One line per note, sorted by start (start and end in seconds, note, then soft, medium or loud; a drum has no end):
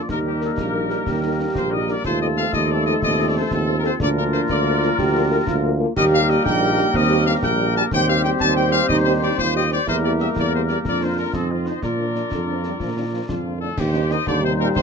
0.09 0.50 D#2 medium
0.09 2.05 G3 medium
0.09 2.01 A#3 medium
0.09 1.03 D#4 medium
0.09 2.01 G4 medium
0.09 2.05 A#4 medium
0.09 0.17 A#4 medium
0.09 concert bass drum medium
0.09 snare medium
0.24 0.31 G3 medium
0.24 0.30 D#4 medium
0.24 0.41 G4 medium
0.24 0.31 A#4 medium
0.41 0.47 G3 medium
0.41 0.47 D#4 medium
0.41 0.50 A4 medium
0.41 0.47 A#4 medium
0.41 snare medium
0.58 0.99 A#1 medium
0.58 1.35 A#4 medium
0.58 concert bass drum medium
0.58 snare medium
0.73 0.80 G3 soft
0.73 0.80 D#4 soft
0.73 0.80 A#4 soft
0.89 0.96 G3 medium
0.89 0.96 D#4 medium
0.89 0.96 A#4 medium
0.89 snare medium
1.06 1.48 D#2 medium
1.06 1.89 G4 medium
1.06 concert bass drum medium
1.06 snare medium
1.23 1.29 G3 medium
1.23 1.29 D#4 medium
1.23 1.29 A#4 medium
1.39 1.45 G3 medium
1.39 1.45 D#4 medium
1.39 1.45 A#4 medium
1.55 1.97 A#1 medium
1.55 1.71 C5 medium
1.55 concert bass drum medium
1.55 snare medium
1.71 1.77 G3 medium
1.71 1.78 D#4 medium
1.71 1.77 A#4 medium
1.71 1.88 D#5 medium
1.88 1.94 G3 medium
1.88 1.94 D#4 medium
1.88 1.94 A#4 medium
1.88 2.05 D5 medium
1.88 snare soft
2.04 2.46 D#2 medium
2.04 3.81 F3 medium
2.04 3.81 A3 medium
2.04 4.00 F4 medium
2.04 2.56 F4 medium
2.04 3.96 A4 medium
2.04 2.20 C5 medium
2.04 concert bass drum medium
2.04 snare medium
2.04 crash soft
2.20 2.28 F3 medium
2.20 2.27 C4 medium
2.20 2.28 A4 medium
2.20 2.27 D#5 medium
2.37 2.43 F3 medium
2.37 2.43 C4 medium
2.37 2.43 A4 medium
2.37 2.52 F5 medium
2.37 snare medium
2.53 2.94 D#2 medium
2.53 3.05 D#4 medium
2.53 2.69 D#5 medium
2.53 concert bass drum medium
2.53 snare medium
2.70 2.76 F3 medium
2.70 2.76 C4 medium
2.70 2.76 A4 medium
2.70 2.86 D5 medium
2.86 2.92 F3 medium
2.86 2.92 C4 medium
2.86 2.92 A4 medium
2.86 2.93 D#5 loud
2.86 snare soft
3.02 3.43 D#2 medium
3.02 3.51 C4 medium
3.02 3.25 D#5 loud
3.02 concert bass drum medium
3.02 snare medium
3.19 3.25 F3 medium
3.19 3.25 C4 medium
3.19 3.25 A4 medium
3.27 3.35 D5 medium
3.35 3.41 F3 medium
3.35 3.41 C4 medium
3.35 3.41 A4 medium
3.35 3.52 C5 medium
3.51 3.92 D#2 medium
3.51 3.97 C4 medium
3.51 3.75 A4 medium
3.51 concert bass drum medium
3.51 snare medium
3.68 3.74 F3 medium
3.68 3.74 C4 medium
3.68 3.74 A4 medium
3.77 3.81 A#4 medium
3.84 3.90 F3 medium
3.84 3.90 C4 medium
3.84 3.90 A4 medium
3.84 3.92 C5 medium
3.84 snare medium
3.98 4.41 D2 medium
3.98 5.91 F3 medium
3.98 5.91 A#3 medium
3.98 4.51 D4 medium
3.98 5.79 F4 medium
3.98 5.79 A#4 medium
3.98 4.09 D5 loud
3.98 concert bass drum medium
3.98 snare medium
4.16 4.22 F3 medium
4.16 4.23 A#3 medium
4.16 4.22 A#4 medium
4.16 4.24 A#4 medium
4.32 4.39 F3 medium
4.32 4.39 A#3 medium
4.32 4.39 A#4 medium
4.32 4.40 C5 medium
4.32 snare medium
4.49 4.90 D2 medium
4.49 4.98 F4 medium
4.49 5.27 D5 medium
4.49 concert bass drum medium
4.49 snare medium
4.65 4.71 F3 medium
4.65 4.71 A#3 medium
4.65 4.71 A#4 medium
4.82 4.88 F3 medium
4.82 4.88 A#3 medium
4.82 4.88 A#4 medium
4.82 snare soft
4.98 5.39 D2 medium
4.98 5.44 G4 medium
4.98 concert bass drum medium
4.98 snare medium
5.15 5.21 F3 medium
5.15 5.21 A#3 medium
5.15 5.21 A#4 medium
5.30 5.36 F3 medium
5.30 5.36 A#3 medium
5.30 5.37 A#4 medium
5.47 5.85 D2 medium
5.47 5.93 F4 medium
5.47 concert bass drum medium
5.47 snare medium
5.63 5.69 F3 medium
5.63 5.69 A#3 medium
5.63 5.69 A#4 medium
5.79 5.85 F3 medium
5.79 5.85 A#3 medium
5.79 5.85 A#4 medium
5.95 6.37 D#2 medium
5.95 7.87 G3 medium
5.95 7.87 A#3 medium
5.95 7.87 G4 medium
5.95 6.46 G4 medium
5.95 7.88 A#4 medium
5.95 6.04 D#5 loud
5.95 concert bass drum medium
5.95 snare medium
5.95 crash soft
6.11 6.17 G3 medium
6.11 6.17 A#3 medium
6.11 6.17 G4 medium
6.11 6.28 F5 loud
6.28 6.34 G3 medium
6.28 6.34 A#3 medium
6.28 6.34 G4 medium
6.28 6.44 D#5 loud
6.28 snare medium
6.44 6.85 A#1 medium
6.44 6.93 D#4 medium
6.44 6.90 G5 loud
6.44 concert bass drum medium
6.44 snare medium
6.62 6.67 G3 medium
6.62 6.67 A#3 medium
6.62 6.67 G4 medium
6.77 6.83 G3 medium
6.77 6.83 A#3 medium
6.77 6.83 G4 medium
6.77 snare medium
6.93 7.35 D#2 medium
6.93 7.45 C4 medium
6.93 7.26 D#5 loud
6.93 concert bass drum medium
6.93 snare medium
7.10 7.16 G3 medium
7.10 7.16 A#3 medium
7.10 7.16 G4 medium
7.26 7.32 G3 medium
7.26 7.32 A#3 medium
7.26 7.32 G4 medium
7.26 7.33 F5 loud
7.42 7.84 A#1 medium
7.42 7.92 A#3 medium
7.42 7.72 G5 loud
7.42 concert bass drum medium
7.42 snare medium
7.59 7.65 G3 medium
7.59 7.65 A#3 medium
7.59 7.65 G4 medium
7.75 7.81 G3 medium
7.75 7.81 A#3 medium
7.75 7.81 G4 medium
7.75 7.83 A5 loud
7.75 snare medium
7.91 8.32 D#2 medium
7.91 9.72 G3 medium
7.91 9.72 C4 medium
7.91 8.40 G4 medium
7.91 9.84 G4 medium
7.91 9.88 C5 medium
7.91 8.07 G5 loud
7.91 concert bass drum medium
7.91 snare medium
8.08 8.14 G3 medium
8.08 8.14 C4 medium
8.08 8.14 G4 medium
8.08 8.23 F5 loud
8.23 8.30 G3 medium
8.23 8.30 C4 medium
8.23 8.30 G4 medium
8.23 8.31 G5 loud
8.23 snare medium
8.39 8.81 D#2 medium
8.39 8.86 C4 medium
8.39 8.54 A5 loud
8.39 concert bass drum medium
8.39 snare medium
8.55 8.62 G3 medium
8.55 8.62 C4 medium
8.55 8.62 G4 medium
8.55 8.71 G5 medium
8.71 8.78 G3 medium
8.71 8.78 C4 medium
8.71 8.78 G4 medium
8.71 8.87 F5 loud
8.71 snare medium
8.88 9.30 D#2 medium
8.88 9.35 D#4 medium
8.88 8.96 D#5 loud
8.88 concert bass drum medium
8.88 snare medium
9.04 9.12 G3 medium
9.04 9.12 C4 medium
9.04 9.12 G4 medium
9.04 9.12 C5 medium
9.22 9.28 G3 medium
9.22 9.28 C4 medium
9.22 9.28 G4 medium
9.22 9.37 D5 medium
9.38 9.79 D#2 medium
9.38 9.73 F4 medium
9.38 9.53 C5 loud
9.38 concert bass drum medium
9.38 snare medium
9.54 9.60 G3 medium
9.54 9.60 C4 medium
9.54 9.60 G4 medium
9.54 9.69 D#5 medium
9.71 9.77 G3 medium
9.71 9.77 C4 medium
9.71 9.77 G4 medium
9.71 9.86 D5 loud
9.71 snare soft
9.86 10.28 E2 medium
9.86 10.82 G3 medium
9.86 11.30 A#3 medium
9.86 10.52 E4 medium
9.86 10.82 G4 medium
9.86 11.30 A#4 medium
9.86 9.95 C5 loud
9.86 concert bass drum medium
9.86 snare medium
9.86 crash soft
10.03 10.09 G3 medium
10.03 10.09 A#3 medium
10.03 10.09 G4 medium
10.03 10.11 D5 medium
10.20 10.26 G3 medium
10.20 10.26 A#3 medium
10.20 10.26 G4 medium
10.20 10.28 E5 medium
10.20 snare medium
10.36 10.77 E2 medium
10.36 10.52 D5 medium
10.36 concert bass drum medium
10.36 snare medium
10.52 10.58 G3 medium
10.52 10.59 A#3 medium
10.52 10.58 G4 soft
10.52 10.60 C5 medium
10.69 10.75 G3 medium
10.69 10.75 A#3 medium
10.69 10.75 G4 medium
10.69 10.76 D5 medium
10.69 snare soft
10.85 11.25 F2 medium
10.85 11.79 F3 medium
10.85 11.35 D4 medium
10.85 11.82 F4 medium
10.85 11.01 D5 medium
10.85 concert bass drum medium
10.85 snare medium
11.01 11.07 F3 medium
11.01 11.07 A#3 soft
11.01 11.07 D4 medium
11.01 11.18 C5 medium
11.17 11.24 F3 soft
11.17 11.24 A#3 soft
11.17 11.24 D4 medium
11.17 11.32 A#4 medium
11.33 11.70 F2 medium
11.33 11.82 C4 medium
11.33 11.82 D#4 medium
11.33 11.49 A4 medium
11.33 11.83 D#5 medium
11.33 concert bass drum medium
11.33 snare medium
11.50 11.56 F3 soft
11.50 11.56 C4 soft
11.50 11.56 D#4 soft
11.50 11.66 F4 medium
11.66 11.72 F3 soft
11.66 11.72 C4 soft
11.66 11.72 D#4 soft
11.66 11.82 C5 medium
11.66 snare soft
11.82 12.23 A#2 medium
11.82 12.26 F3 soft
11.82 13.25 D4 medium
11.82 12.29 D4 soft
11.82 13.58 F4 medium
11.82 13.25 A#4 medium
11.82 13.58 D5 medium
11.82 concert bass drum medium
11.82 snare medium
11.98 12.04 F3 soft
11.98 12.04 A#3 soft
11.98 12.04 D4 soft
12.14 12.20 F3 soft
12.14 12.20 A#3 soft
12.14 12.20 D4 soft
12.14 snare soft
12.31 12.72 F2 medium
12.31 12.39 D3 medium
12.31 concert bass drum medium
12.31 snare medium
12.47 12.53 F3 soft
12.47 12.63 F3 medium
12.47 12.53 A#3 soft
12.47 12.53 D4 soft
12.63 12.69 F3 soft
12.63 12.72 G3 medium
12.63 12.69 A#3 soft
12.63 12.69 D4 soft
12.63 snare soft
12.80 13.21 A#2 medium
12.80 12.88 F3 medium
12.80 concert bass drum medium
12.80 snare medium
12.96 13.04 D#3 medium
12.96 13.02 F3 soft
12.96 13.02 A#3 soft
12.96 13.02 D4 soft
13.11 13.19 F3 medium
13.11 13.18 F3 soft
13.11 13.18 A#3 soft
13.11 13.18 D4 soft
13.28 13.63 F2 medium
13.28 13.70 F2 medium
13.28 13.39 F3 medium
13.28 13.59 F4 medium
13.28 concert bass drum medium
13.28 snare medium
13.45 13.51 F3 soft
13.45 13.51 A#3 soft
13.45 13.51 D4 soft
13.54 13.57 D#3 soft
13.60 13.79 A2 medium
13.60 13.69 D3 soft
13.60 13.67 F3 soft
13.60 13.67 A#3 soft
13.60 13.67 D4 soft
13.60 13.76 A4 medium
13.77 14.19 D#2 medium
13.77 14.10 G2 medium
13.77 14.82 D#4 medium
13.77 14.10 G4 medium
13.77 14.82 C5 medium
13.77 concert bass drum medium
13.77 snare medium
13.77 crash medium
13.94 14.00 G3 medium
13.94 14.00 C4 medium
13.94 14.00 D#4 medium
13.94 snare medium
14.10 14.18 D#3 medium
14.10 14.16 G3 medium
14.10 14.16 C4 medium
14.10 14.16 D#4 medium
14.10 14.27 D#5 loud
14.10 snare medium
14.27 14.68 D#2 medium
14.27 14.44 D3 medium
14.27 14.82 G3 medium
14.27 14.42 D5 loud
14.27 concert bass drum medium
14.27 snare medium
14.42 14.58 C3 medium
14.42 14.49 G3 medium
14.42 14.49 C4 medium
14.42 14.49 D#4 medium
14.42 14.51 C5 medium
14.59 14.74 A#2 medium
14.59 14.65 G3 medium
14.59 14.65 C4 medium
14.59 14.65 D#4 medium
14.59 14.67 A#4 loud
14.75 14.82 D#2 medium
14.75 14.82 C3 medium
14.75 14.82 C5 loud
14.75 concert bass drum medium
14.75 snare medium